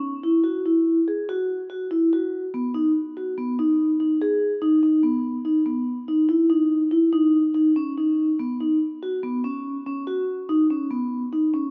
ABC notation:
X:1
M:7/4
L:1/8
Q:1/4=143
K:B
V:1 name="Vibraphone"
C E F E2 G F2 F E F2 B, D | z F B, D2 D G2 D D B,2 D B,- | B, D E D2 E D2 D C D2 B, D | z F B, C2 C F2 D C B,2 D C |]